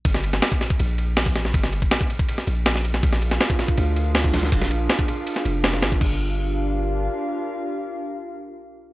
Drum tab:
CC |----------------|----------------|----------------|----------------|
RD |x-x-x-x-x-x---x-|x-x-x-x-x-x-x-x-|x-x-x-x-x-x---x-|x-x-x-x-x-x-x-x-|
HH |------------o---|----------------|------------o---|----------------|
SD |-o-oo-o-----o-oo|-o--o----o--oo-o|-o-oo-o-----o-oo|-o--o----o--ooo-|
BD |o----o-o-----o--|o--o-o-o--------|o----o-o-----o--|o----o---------o|

CC |x---------------|----------------|
RD |----------------|----------------|
HH |----------------|----------------|
SD |----------------|----------------|
BD |o---------------|----------------|